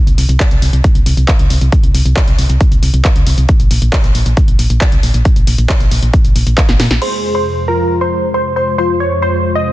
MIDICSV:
0, 0, Header, 1, 7, 480
1, 0, Start_track
1, 0, Key_signature, -4, "minor"
1, 0, Tempo, 441176
1, 1876, Time_signature, 4, 2, 24, 8
1, 10581, End_track
2, 0, Start_track
2, 0, Title_t, "Grand piano"
2, 0, Program_c, 0, 0
2, 7634, Note_on_c, 0, 84, 88
2, 7938, Note_off_c, 0, 84, 0
2, 7994, Note_on_c, 0, 84, 84
2, 8299, Note_off_c, 0, 84, 0
2, 8356, Note_on_c, 0, 82, 76
2, 8659, Note_off_c, 0, 82, 0
2, 8716, Note_on_c, 0, 84, 83
2, 9020, Note_off_c, 0, 84, 0
2, 9077, Note_on_c, 0, 84, 81
2, 9279, Note_off_c, 0, 84, 0
2, 9318, Note_on_c, 0, 84, 78
2, 9519, Note_off_c, 0, 84, 0
2, 9557, Note_on_c, 0, 84, 83
2, 9759, Note_off_c, 0, 84, 0
2, 9795, Note_on_c, 0, 85, 78
2, 9998, Note_off_c, 0, 85, 0
2, 10035, Note_on_c, 0, 84, 84
2, 10339, Note_off_c, 0, 84, 0
2, 10396, Note_on_c, 0, 87, 78
2, 10581, Note_off_c, 0, 87, 0
2, 10581, End_track
3, 0, Start_track
3, 0, Title_t, "Supersaw synth"
3, 0, Program_c, 1, 81
3, 7636, Note_on_c, 1, 72, 94
3, 7939, Note_off_c, 1, 72, 0
3, 7994, Note_on_c, 1, 72, 91
3, 8298, Note_off_c, 1, 72, 0
3, 8356, Note_on_c, 1, 70, 91
3, 8659, Note_off_c, 1, 70, 0
3, 8717, Note_on_c, 1, 72, 93
3, 9020, Note_off_c, 1, 72, 0
3, 9075, Note_on_c, 1, 72, 91
3, 9278, Note_off_c, 1, 72, 0
3, 9315, Note_on_c, 1, 72, 82
3, 9518, Note_off_c, 1, 72, 0
3, 9556, Note_on_c, 1, 72, 86
3, 9758, Note_off_c, 1, 72, 0
3, 9795, Note_on_c, 1, 73, 82
3, 9998, Note_off_c, 1, 73, 0
3, 10035, Note_on_c, 1, 72, 91
3, 10339, Note_off_c, 1, 72, 0
3, 10395, Note_on_c, 1, 75, 86
3, 10581, Note_off_c, 1, 75, 0
3, 10581, End_track
4, 0, Start_track
4, 0, Title_t, "Soft synth lead"
4, 0, Program_c, 2, 80
4, 7635, Note_on_c, 2, 68, 99
4, 8260, Note_off_c, 2, 68, 0
4, 8357, Note_on_c, 2, 65, 96
4, 8980, Note_off_c, 2, 65, 0
4, 9556, Note_on_c, 2, 65, 89
4, 10012, Note_off_c, 2, 65, 0
4, 10516, Note_on_c, 2, 72, 97
4, 10581, Note_off_c, 2, 72, 0
4, 10581, End_track
5, 0, Start_track
5, 0, Title_t, "Analog synth pad"
5, 0, Program_c, 3, 89
5, 7634, Note_on_c, 3, 48, 72
5, 7634, Note_on_c, 3, 56, 71
5, 7635, Note_on_c, 3, 41, 74
5, 7635, Note_on_c, 3, 65, 75
5, 7635, Note_on_c, 3, 72, 88
5, 10581, Note_off_c, 3, 41, 0
5, 10581, Note_off_c, 3, 48, 0
5, 10581, Note_off_c, 3, 56, 0
5, 10581, Note_off_c, 3, 65, 0
5, 10581, Note_off_c, 3, 72, 0
5, 10581, End_track
6, 0, Start_track
6, 0, Title_t, "FM bass"
6, 0, Program_c, 4, 39
6, 76, Note_on_c, 4, 36, 85
6, 163, Note_off_c, 4, 36, 0
6, 195, Note_on_c, 4, 36, 101
6, 283, Note_off_c, 4, 36, 0
6, 315, Note_on_c, 4, 36, 91
6, 402, Note_off_c, 4, 36, 0
6, 555, Note_on_c, 4, 36, 81
6, 643, Note_off_c, 4, 36, 0
6, 675, Note_on_c, 4, 36, 100
6, 763, Note_off_c, 4, 36, 0
6, 795, Note_on_c, 4, 36, 92
6, 883, Note_off_c, 4, 36, 0
6, 1035, Note_on_c, 4, 36, 81
6, 1123, Note_off_c, 4, 36, 0
6, 1155, Note_on_c, 4, 36, 101
6, 1243, Note_off_c, 4, 36, 0
6, 1276, Note_on_c, 4, 36, 87
6, 1363, Note_off_c, 4, 36, 0
6, 1517, Note_on_c, 4, 37, 88
6, 1604, Note_off_c, 4, 37, 0
6, 1637, Note_on_c, 4, 36, 95
6, 1724, Note_off_c, 4, 36, 0
6, 1757, Note_on_c, 4, 36, 95
6, 1844, Note_off_c, 4, 36, 0
6, 1996, Note_on_c, 4, 36, 87
6, 2083, Note_off_c, 4, 36, 0
6, 2116, Note_on_c, 4, 36, 96
6, 2203, Note_off_c, 4, 36, 0
6, 2236, Note_on_c, 4, 36, 87
6, 2323, Note_off_c, 4, 36, 0
6, 2475, Note_on_c, 4, 36, 81
6, 2562, Note_off_c, 4, 36, 0
6, 2595, Note_on_c, 4, 36, 98
6, 2683, Note_off_c, 4, 36, 0
6, 2715, Note_on_c, 4, 36, 90
6, 2803, Note_off_c, 4, 36, 0
6, 2954, Note_on_c, 4, 36, 83
6, 3042, Note_off_c, 4, 36, 0
6, 3074, Note_on_c, 4, 36, 99
6, 3162, Note_off_c, 4, 36, 0
6, 3195, Note_on_c, 4, 36, 92
6, 3283, Note_off_c, 4, 36, 0
6, 3435, Note_on_c, 4, 37, 87
6, 3523, Note_off_c, 4, 37, 0
6, 3555, Note_on_c, 4, 36, 97
6, 3643, Note_off_c, 4, 36, 0
6, 3675, Note_on_c, 4, 36, 89
6, 3763, Note_off_c, 4, 36, 0
6, 3916, Note_on_c, 4, 34, 88
6, 4003, Note_off_c, 4, 34, 0
6, 4035, Note_on_c, 4, 34, 100
6, 4123, Note_off_c, 4, 34, 0
6, 4155, Note_on_c, 4, 34, 86
6, 4243, Note_off_c, 4, 34, 0
6, 4396, Note_on_c, 4, 34, 86
6, 4483, Note_off_c, 4, 34, 0
6, 4515, Note_on_c, 4, 34, 100
6, 4603, Note_off_c, 4, 34, 0
6, 4635, Note_on_c, 4, 34, 89
6, 4723, Note_off_c, 4, 34, 0
6, 4875, Note_on_c, 4, 34, 84
6, 4962, Note_off_c, 4, 34, 0
6, 4994, Note_on_c, 4, 34, 94
6, 5082, Note_off_c, 4, 34, 0
6, 5115, Note_on_c, 4, 34, 86
6, 5203, Note_off_c, 4, 34, 0
6, 5356, Note_on_c, 4, 36, 88
6, 5443, Note_off_c, 4, 36, 0
6, 5476, Note_on_c, 4, 34, 99
6, 5563, Note_off_c, 4, 34, 0
6, 5595, Note_on_c, 4, 34, 93
6, 5683, Note_off_c, 4, 34, 0
6, 5836, Note_on_c, 4, 34, 83
6, 5923, Note_off_c, 4, 34, 0
6, 5956, Note_on_c, 4, 34, 96
6, 6043, Note_off_c, 4, 34, 0
6, 6076, Note_on_c, 4, 34, 89
6, 6163, Note_off_c, 4, 34, 0
6, 6316, Note_on_c, 4, 34, 82
6, 6403, Note_off_c, 4, 34, 0
6, 6436, Note_on_c, 4, 34, 104
6, 6523, Note_off_c, 4, 34, 0
6, 6556, Note_on_c, 4, 34, 90
6, 6643, Note_off_c, 4, 34, 0
6, 6796, Note_on_c, 4, 34, 84
6, 6883, Note_off_c, 4, 34, 0
6, 6916, Note_on_c, 4, 34, 103
6, 7003, Note_off_c, 4, 34, 0
6, 7036, Note_on_c, 4, 34, 87
6, 7123, Note_off_c, 4, 34, 0
6, 7275, Note_on_c, 4, 34, 87
6, 7363, Note_off_c, 4, 34, 0
6, 7395, Note_on_c, 4, 46, 95
6, 7483, Note_off_c, 4, 46, 0
6, 7516, Note_on_c, 4, 34, 95
6, 7603, Note_off_c, 4, 34, 0
6, 10581, End_track
7, 0, Start_track
7, 0, Title_t, "Drums"
7, 78, Note_on_c, 9, 42, 60
7, 187, Note_off_c, 9, 42, 0
7, 197, Note_on_c, 9, 46, 104
7, 306, Note_off_c, 9, 46, 0
7, 317, Note_on_c, 9, 42, 62
7, 426, Note_off_c, 9, 42, 0
7, 436, Note_on_c, 9, 36, 111
7, 437, Note_on_c, 9, 39, 107
7, 437, Note_on_c, 9, 42, 58
7, 545, Note_off_c, 9, 36, 0
7, 546, Note_off_c, 9, 39, 0
7, 546, Note_off_c, 9, 42, 0
7, 557, Note_on_c, 9, 42, 61
7, 666, Note_off_c, 9, 42, 0
7, 677, Note_on_c, 9, 46, 88
7, 786, Note_off_c, 9, 46, 0
7, 797, Note_on_c, 9, 42, 61
7, 905, Note_off_c, 9, 42, 0
7, 916, Note_on_c, 9, 36, 112
7, 916, Note_on_c, 9, 42, 61
7, 1025, Note_off_c, 9, 36, 0
7, 1025, Note_off_c, 9, 42, 0
7, 1036, Note_on_c, 9, 42, 56
7, 1145, Note_off_c, 9, 42, 0
7, 1156, Note_on_c, 9, 46, 103
7, 1265, Note_off_c, 9, 46, 0
7, 1277, Note_on_c, 9, 42, 60
7, 1385, Note_off_c, 9, 42, 0
7, 1396, Note_on_c, 9, 36, 117
7, 1396, Note_on_c, 9, 39, 109
7, 1396, Note_on_c, 9, 42, 63
7, 1504, Note_off_c, 9, 39, 0
7, 1504, Note_off_c, 9, 42, 0
7, 1505, Note_off_c, 9, 36, 0
7, 1516, Note_on_c, 9, 42, 59
7, 1625, Note_off_c, 9, 42, 0
7, 1636, Note_on_c, 9, 46, 86
7, 1745, Note_off_c, 9, 46, 0
7, 1755, Note_on_c, 9, 42, 58
7, 1864, Note_off_c, 9, 42, 0
7, 1876, Note_on_c, 9, 36, 107
7, 1876, Note_on_c, 9, 42, 64
7, 1984, Note_off_c, 9, 36, 0
7, 1985, Note_off_c, 9, 42, 0
7, 1996, Note_on_c, 9, 42, 58
7, 2105, Note_off_c, 9, 42, 0
7, 2117, Note_on_c, 9, 46, 102
7, 2226, Note_off_c, 9, 46, 0
7, 2237, Note_on_c, 9, 42, 63
7, 2346, Note_off_c, 9, 42, 0
7, 2355, Note_on_c, 9, 36, 117
7, 2356, Note_on_c, 9, 39, 116
7, 2356, Note_on_c, 9, 42, 65
7, 2464, Note_off_c, 9, 36, 0
7, 2465, Note_off_c, 9, 39, 0
7, 2465, Note_off_c, 9, 42, 0
7, 2476, Note_on_c, 9, 42, 64
7, 2585, Note_off_c, 9, 42, 0
7, 2595, Note_on_c, 9, 46, 88
7, 2704, Note_off_c, 9, 46, 0
7, 2715, Note_on_c, 9, 42, 65
7, 2824, Note_off_c, 9, 42, 0
7, 2835, Note_on_c, 9, 36, 113
7, 2836, Note_on_c, 9, 42, 66
7, 2944, Note_off_c, 9, 36, 0
7, 2945, Note_off_c, 9, 42, 0
7, 2956, Note_on_c, 9, 42, 61
7, 3065, Note_off_c, 9, 42, 0
7, 3076, Note_on_c, 9, 46, 97
7, 3185, Note_off_c, 9, 46, 0
7, 3196, Note_on_c, 9, 42, 63
7, 3304, Note_off_c, 9, 42, 0
7, 3315, Note_on_c, 9, 36, 114
7, 3315, Note_on_c, 9, 39, 107
7, 3315, Note_on_c, 9, 42, 60
7, 3424, Note_off_c, 9, 36, 0
7, 3424, Note_off_c, 9, 39, 0
7, 3424, Note_off_c, 9, 42, 0
7, 3435, Note_on_c, 9, 42, 64
7, 3544, Note_off_c, 9, 42, 0
7, 3553, Note_on_c, 9, 46, 84
7, 3662, Note_off_c, 9, 46, 0
7, 3675, Note_on_c, 9, 42, 63
7, 3784, Note_off_c, 9, 42, 0
7, 3793, Note_on_c, 9, 42, 63
7, 3795, Note_on_c, 9, 36, 111
7, 3902, Note_off_c, 9, 42, 0
7, 3904, Note_off_c, 9, 36, 0
7, 3914, Note_on_c, 9, 42, 63
7, 4023, Note_off_c, 9, 42, 0
7, 4034, Note_on_c, 9, 46, 99
7, 4143, Note_off_c, 9, 46, 0
7, 4155, Note_on_c, 9, 42, 67
7, 4264, Note_off_c, 9, 42, 0
7, 4275, Note_on_c, 9, 36, 109
7, 4276, Note_on_c, 9, 39, 114
7, 4276, Note_on_c, 9, 42, 65
7, 4384, Note_off_c, 9, 36, 0
7, 4385, Note_off_c, 9, 39, 0
7, 4385, Note_off_c, 9, 42, 0
7, 4395, Note_on_c, 9, 42, 64
7, 4504, Note_off_c, 9, 42, 0
7, 4515, Note_on_c, 9, 46, 86
7, 4624, Note_off_c, 9, 46, 0
7, 4634, Note_on_c, 9, 42, 67
7, 4743, Note_off_c, 9, 42, 0
7, 4754, Note_on_c, 9, 42, 69
7, 4755, Note_on_c, 9, 36, 107
7, 4863, Note_off_c, 9, 42, 0
7, 4864, Note_off_c, 9, 36, 0
7, 4875, Note_on_c, 9, 42, 61
7, 4983, Note_off_c, 9, 42, 0
7, 4995, Note_on_c, 9, 46, 101
7, 5103, Note_off_c, 9, 46, 0
7, 5114, Note_on_c, 9, 42, 67
7, 5223, Note_off_c, 9, 42, 0
7, 5234, Note_on_c, 9, 39, 109
7, 5234, Note_on_c, 9, 42, 66
7, 5235, Note_on_c, 9, 36, 113
7, 5343, Note_off_c, 9, 39, 0
7, 5343, Note_off_c, 9, 42, 0
7, 5344, Note_off_c, 9, 36, 0
7, 5354, Note_on_c, 9, 42, 69
7, 5463, Note_off_c, 9, 42, 0
7, 5475, Note_on_c, 9, 46, 83
7, 5584, Note_off_c, 9, 46, 0
7, 5595, Note_on_c, 9, 42, 69
7, 5704, Note_off_c, 9, 42, 0
7, 5714, Note_on_c, 9, 42, 68
7, 5715, Note_on_c, 9, 36, 111
7, 5823, Note_off_c, 9, 42, 0
7, 5824, Note_off_c, 9, 36, 0
7, 5834, Note_on_c, 9, 42, 63
7, 5943, Note_off_c, 9, 42, 0
7, 5955, Note_on_c, 9, 46, 103
7, 6063, Note_off_c, 9, 46, 0
7, 6075, Note_on_c, 9, 42, 70
7, 6183, Note_off_c, 9, 42, 0
7, 6195, Note_on_c, 9, 36, 112
7, 6195, Note_on_c, 9, 39, 116
7, 6195, Note_on_c, 9, 42, 68
7, 6304, Note_off_c, 9, 36, 0
7, 6304, Note_off_c, 9, 39, 0
7, 6304, Note_off_c, 9, 42, 0
7, 6315, Note_on_c, 9, 42, 69
7, 6424, Note_off_c, 9, 42, 0
7, 6435, Note_on_c, 9, 46, 89
7, 6544, Note_off_c, 9, 46, 0
7, 6556, Note_on_c, 9, 42, 69
7, 6665, Note_off_c, 9, 42, 0
7, 6675, Note_on_c, 9, 36, 115
7, 6677, Note_on_c, 9, 42, 67
7, 6784, Note_off_c, 9, 36, 0
7, 6785, Note_off_c, 9, 42, 0
7, 6796, Note_on_c, 9, 42, 66
7, 6904, Note_off_c, 9, 42, 0
7, 6916, Note_on_c, 9, 46, 98
7, 7025, Note_off_c, 9, 46, 0
7, 7035, Note_on_c, 9, 42, 72
7, 7144, Note_off_c, 9, 42, 0
7, 7155, Note_on_c, 9, 36, 115
7, 7156, Note_on_c, 9, 39, 118
7, 7156, Note_on_c, 9, 42, 69
7, 7264, Note_off_c, 9, 36, 0
7, 7264, Note_off_c, 9, 39, 0
7, 7264, Note_off_c, 9, 42, 0
7, 7276, Note_on_c, 9, 38, 53
7, 7276, Note_on_c, 9, 42, 66
7, 7384, Note_off_c, 9, 38, 0
7, 7384, Note_off_c, 9, 42, 0
7, 7394, Note_on_c, 9, 38, 75
7, 7394, Note_on_c, 9, 46, 85
7, 7503, Note_off_c, 9, 38, 0
7, 7503, Note_off_c, 9, 46, 0
7, 7515, Note_on_c, 9, 38, 76
7, 7515, Note_on_c, 9, 42, 64
7, 7624, Note_off_c, 9, 38, 0
7, 7624, Note_off_c, 9, 42, 0
7, 7634, Note_on_c, 9, 49, 71
7, 7743, Note_off_c, 9, 49, 0
7, 10581, End_track
0, 0, End_of_file